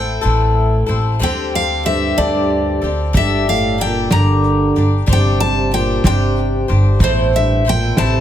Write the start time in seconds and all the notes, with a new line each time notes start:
Already playing: A1 A3 C4 E4 A4 G5
0.21 A1 A2 E3 A3 C4 E4 A4
0.86 A1 A3 C4 E4 A4
1.19 D2 D3 G3 C4 G4 A4 G5
1.55 F5
1.83 G2 G3 C4 G4 A4 E5
2.18 D2 G2 D3 G3 C4 G4 A4 D5
2.82 D2 C4 G4 A4
3.13 G1 G2 G3 D4 G4 A4 E5, kick, closed hi-hat
3.46 A2 F5, closed hi-hat
3.78 A#3 D4 G4 A4 G5, closed hi-hat
3.83 A#2
4.10 G1 G3 A#3 D4 G4 A#5, snare, closed hi-hat
4.15 D3
4.44 closed hi-hat
4.75 G1 D4 G4, closed hi-hat
5.06 G1 G3 D4 G4 C5, kick, closed hi-hat
5.12 C3 G5
5.40 C3 A5
5.71 A#2 G3 D4 G4 C5 G5, closed hi-hat
6.04 G1 C3 G3 D4 G4 C5 G5, kick, snare, closed hi-hat
6.36 closed hi-hat
6.68 G1 D4 G4 C5, closed hi-hat
6.99 A1 A2 E3 A3 C4 E4 C5, kick, closed hi-hat
7.04 E2 C5
7.33 G2 E5, closed hi-hat
7.65 A#2 A3 C4 E4 C5, closed hi-hat
7.69 G5
7.97 A1 A2 C3 E3 A3 C4 E4 C5 A5, snare